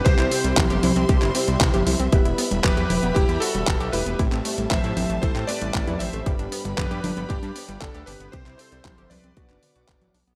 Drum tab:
HH |xxoxxxoxxxoxxxox|xxoxxxoxxxoxxxox|xxoxxxoxxxoxxxox|xxoxxxoxxxoxxxox|
CP |-x--x----x--x---|----x-------x---|-x--x----x--x---|----x-------x---|
CG |----o-o------o--|----o-o---------|----o-o------o--|----o-o---------|
BD |o---o---o---o---|o---o---o---o---|o---o---o---o---|o---o---o---o---|

HH |xxoxxxoxxxoxxxox|
CP |-x--x----x--x---|
CG |----o-o------o--|
BD |o---o---o---o---|